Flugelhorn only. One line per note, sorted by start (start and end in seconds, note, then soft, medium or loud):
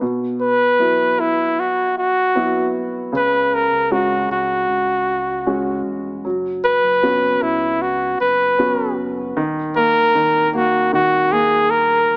0.41 1.22 B4 medium
1.20 1.61 E4 medium
1.60 1.97 F#4 medium
1.98 2.71 F#4 medium
3.16 3.55 B4 medium
3.54 3.93 A#4 medium
3.92 4.30 F#4 medium
4.31 5.83 F#4 medium
6.64 7.44 B4 medium
7.42 7.83 E4 medium
7.82 8.20 F#4 medium
8.21 8.94 B4 medium
9.77 10.50 A#4 loud
10.55 10.91 F#4 medium
10.94 11.34 F#4 medium
11.32 11.72 G#4 medium
11.70 12.17 A#4 medium